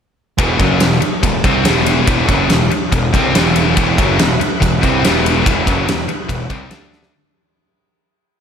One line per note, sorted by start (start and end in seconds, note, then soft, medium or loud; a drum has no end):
0.38 0.58 E1 medium
0.38 0.58 E2 medium
0.38 0.59 B2 loud
0.38 0.59 E3 loud
0.38 kick loud
0.38 ride medium
0.59 0.79 F#1 medium
0.59 0.79 F#2 medium
0.59 0.80 C#3 loud
0.59 0.80 F#3 loud
0.59 kick loud
0.59 ride medium
0.80 1.00 E1 medium
0.80 0.97 E2 medium
0.80 0.98 B2 medium
0.80 snare loud
0.80 ride loud
0.92 snare soft
1.00 muted distorted electric guitar stroke medium
1.00 muted picked electric bass stroke soft
1.00 ride medium
1.23 1.43 E1 medium
1.23 1.40 E2 medium
1.23 1.40 B2 medium
1.23 kick medium
1.23 ride medium
1.44 1.64 C2 loud
1.44 1.65 C3 loud
1.44 1.65 G3 loud
1.44 1.65 C4 loud
1.44 kick loud
1.44 ride medium
1.65 2.05 E1 medium
1.65 2.06 E2 loud
1.65 2.06 B2 loud
1.65 2.07 E3 loud
1.65 snare loud
1.65 ride loud
1.86 ride medium
2.07 2.27 E1 medium
2.07 2.28 E2 loud
2.07 2.28 B2 loud
2.07 2.28 E3 loud
2.07 kick loud
2.07 ride medium
2.29 2.48 F#1 loud
2.29 2.49 F#2 medium
2.29 2.49 C#3 medium
2.29 2.50 F#3 loud
2.29 kick loud
2.29 ride medium
2.49 2.70 E1 medium
2.49 2.67 E2 medium
2.49 2.67 B2 medium
2.49 snare loud
2.49 ride medium
2.71 muted distorted electric guitar stroke medium
2.71 muted picked electric bass stroke soft
2.71 ride medium
2.92 3.12 E1 medium
2.92 3.09 E2 medium
2.92 3.09 B2 medium
2.92 kick loud
2.92 ride medium
3.13 3.33 C2 medium
3.13 3.34 C3 loud
3.13 3.34 G3 loud
3.13 3.34 C4 loud
3.13 kick loud
3.13 ride medium
3.34 3.74 E1 loud
3.34 3.74 E2 medium
3.34 3.75 B2 loud
3.34 3.75 E3 loud
3.34 snare loud
3.34 ride loud
3.56 ride medium
3.76 3.97 E1 medium
3.76 3.97 E2 medium
3.76 3.97 B2 medium
3.76 3.97 E3 loud
3.76 6.67 E4 medium
3.76 6.67 B4 medium
3.76 6.67 F#5 medium
3.76 kick loud
3.76 ride medium
3.97 4.18 F#1 loud
3.97 4.18 F#2 medium
3.97 4.18 C#3 loud
3.97 4.19 F#3 loud
3.97 kick loud
3.97 ride medium
4.18 4.39 E1 medium
4.18 4.36 E2 medium
4.18 4.36 B2 medium
4.18 snare loud
4.18 ride medium
4.40 muted distorted electric guitar stroke medium
4.40 muted picked electric bass stroke soft
4.40 ride medium
4.60 4.81 E1 medium
4.60 4.78 E2 medium
4.60 4.78 B2 medium
4.60 kick medium
4.60 ride loud
4.81 5.02 C2 loud
4.81 5.02 C3 loud
4.81 5.02 G3 loud
4.81 5.03 C4 loud
4.81 kick loud
4.81 ride medium
5.03 5.43 E1 medium
5.03 5.43 E2 loud
5.03 5.44 B2 loud
5.03 5.44 E3 loud
5.03 snare loud
5.03 ride loud
5.26 ride medium
5.45 5.65 E1 medium
5.45 5.65 E2 medium
5.45 5.65 B2 loud
5.45 5.66 E3 loud
5.45 kick loud
5.45 ride loud
5.65 5.86 F#1 medium
5.65 5.86 F#2 medium
5.65 5.86 C#3 loud
5.65 5.86 F#3 loud
5.65 kick loud
5.65 ride medium
5.87 6.07 E1 medium
5.87 6.04 E2 medium
5.87 6.04 B2 medium
5.87 snare loud
5.87 ride loud
5.99 snare soft
6.08 muted distorted electric guitar stroke medium
6.08 muted picked electric bass stroke soft
6.08 ride medium
6.29 6.48 E1 medium
6.29 6.45 E2 medium
6.29 6.45 B2 medium
6.29 kick medium
6.29 ride medium
6.50 6.69 C2 medium
6.50 6.70 C3 loud
6.50 6.70 G3 loud
6.50 6.70 C4 loud
6.50 kick loud
6.50 ride medium
6.70 7.09 D2 medium
6.70 7.11 D3 medium
6.70 7.11 A3 loud
6.70 7.11 D4 medium
6.70 7.11 D4 loud
6.70 7.11 A4 medium
6.70 7.11 E5 medium
6.70 snare loud
6.70 ride medium
6.92 snare medium
7.03 snare medium